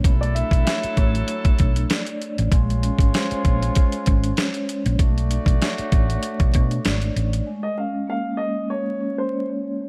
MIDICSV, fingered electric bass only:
0, 0, Header, 1, 3, 480
1, 0, Start_track
1, 0, Tempo, 618557
1, 33, Time_signature, 4, 2, 24, 8
1, 7672, End_track
2, 0, Start_track
2, 0, Title_t, "Fingered electric bass"
2, 0, Program_c, 0, 33
2, 36, Note_on_c, 0, 35, 104
2, 322, Note_off_c, 0, 35, 0
2, 400, Note_on_c, 0, 35, 89
2, 484, Note_off_c, 0, 35, 0
2, 759, Note_on_c, 0, 33, 101
2, 940, Note_off_c, 0, 33, 0
2, 1243, Note_on_c, 0, 35, 90
2, 1423, Note_off_c, 0, 35, 0
2, 1852, Note_on_c, 0, 33, 90
2, 1932, Note_off_c, 0, 33, 0
2, 1956, Note_on_c, 0, 34, 105
2, 2242, Note_off_c, 0, 34, 0
2, 2321, Note_on_c, 0, 32, 88
2, 2404, Note_off_c, 0, 32, 0
2, 2679, Note_on_c, 0, 34, 98
2, 2860, Note_off_c, 0, 34, 0
2, 3163, Note_on_c, 0, 32, 91
2, 3343, Note_off_c, 0, 32, 0
2, 3772, Note_on_c, 0, 34, 94
2, 3851, Note_off_c, 0, 34, 0
2, 3876, Note_on_c, 0, 35, 107
2, 4161, Note_off_c, 0, 35, 0
2, 4241, Note_on_c, 0, 35, 92
2, 4324, Note_off_c, 0, 35, 0
2, 4599, Note_on_c, 0, 33, 81
2, 4781, Note_off_c, 0, 33, 0
2, 4969, Note_on_c, 0, 35, 89
2, 5050, Note_off_c, 0, 35, 0
2, 5084, Note_on_c, 0, 47, 99
2, 5264, Note_off_c, 0, 47, 0
2, 5318, Note_on_c, 0, 32, 95
2, 5500, Note_off_c, 0, 32, 0
2, 5558, Note_on_c, 0, 33, 95
2, 5740, Note_off_c, 0, 33, 0
2, 7672, End_track
3, 0, Start_track
3, 0, Title_t, "Muted fingered electric bass strokes"
3, 652, Note_on_c, 9, 29, 52
3, 730, Note_off_c, 9, 29, 0
3, 2573, Note_on_c, 9, 29, 51
3, 2651, Note_off_c, 9, 29, 0
3, 4493, Note_on_c, 9, 29, 51
3, 4571, Note_off_c, 9, 29, 0
3, 7672, End_track
0, 0, End_of_file